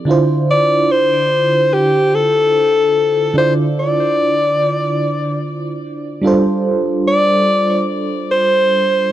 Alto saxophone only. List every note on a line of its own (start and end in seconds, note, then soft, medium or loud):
0.51 0.93 D5 loud
0.92 1.75 C5 loud
1.74 2.16 G4 loud
2.15 3.37 A4 loud
3.38 3.54 C5 loud
3.79 5.39 D5 loud
7.08 7.85 D5 loud
8.31 9.12 C5 loud